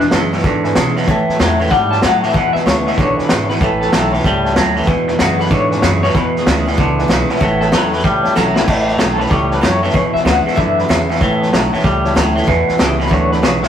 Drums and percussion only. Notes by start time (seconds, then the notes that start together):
0.00 snare
0.11 snare, hi-hat pedal
0.32 snare
0.38 snare
0.44 kick, snare
0.64 snare
0.75 snare, hi-hat pedal
0.96 snare
1.02 snare
1.07 kick, snare
1.29 snare
1.40 snare, hi-hat pedal
1.60 snare
1.66 snare
1.71 kick, snare
1.92 snare
2.02 snare, hi-hat pedal
2.23 snare
2.29 snare
2.34 kick, snare
2.55 snare
2.67 snare, hi-hat pedal
2.87 snare
2.93 snare
2.98 kick, snare
3.18 snare
3.29 snare, hi-hat pedal
3.49 snare
3.55 snare
3.61 kick, snare
3.81 snare
3.92 snare, hi-hat pedal
4.13 snare
4.19 snare
4.24 kick, snare
4.45 snare
4.56 snare, hi-hat pedal
4.76 snare
4.82 snare
4.87 kick, snare
5.08 snare
5.19 snare, hi-hat pedal
5.40 snare
5.45 snare
5.51 kick, snare
5.71 snare
5.82 snare, hi-hat pedal
6.03 snare
6.09 snare
6.15 kick, snare
6.36 snare
6.46 snare, hi-hat pedal
6.67 snare
6.72 snare
6.78 kick, snare
6.98 snare
7.09 snare, hi-hat pedal
7.29 snare
7.35 snare
7.41 kick, snare
7.61 snare
7.72 snare, hi-hat pedal
7.93 snare
7.98 snare
8.04 kick, snare
8.24 snare
8.36 snare, hi-hat pedal
8.56 snare
8.68 kick, snare, crash
8.88 snare
8.99 snare, hi-hat pedal
9.20 snare
9.26 snare
9.31 kick, snare
9.51 snare
9.63 snare, hi-hat pedal
9.83 snare
9.89 snare
9.94 kick, snare
10.15 snare
10.26 snare, hi-hat pedal
10.47 snare
10.53 snare
10.58 kick, snare
10.78 snare
10.90 snare, hi-hat pedal
11.10 snare
11.15 snare
11.21 kick, snare
11.42 snare
11.53 snare, hi-hat pedal
11.73 snare
11.79 snare
11.84 kick, snare
12.04 snare
12.16 snare, hi-hat pedal
12.37 snare
12.42 snare
12.48 kick, snare
12.68 snare
12.79 snare, hi-hat pedal
13.00 snare
13.06 snare
13.11 kick, snare
13.32 snare
13.43 snare, hi-hat pedal
13.63 snare